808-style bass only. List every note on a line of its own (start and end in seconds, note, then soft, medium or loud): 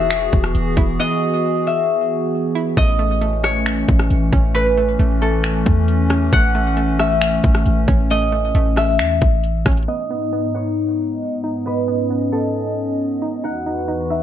0.00 0.29 E1 loud
0.33 0.54 E1 loud
0.55 0.76 E1 loud
0.77 0.98 E1 loud
2.77 3.84 A1 loud
3.89 4.10 A1 loud
4.11 4.32 A1 loud
4.33 4.97 A1 loud
4.99 5.63 A1 loud
5.66 6.30 E2 loud
6.33 7.40 A1 loud
7.44 7.65 A1 loud
7.66 7.87 A1 loud
7.88 8.52 A1 loud
8.55 9.01 A1 loud
8.99 9.20 E2 loud
9.22 9.64 A1 loud
9.66 9.87 A1 loud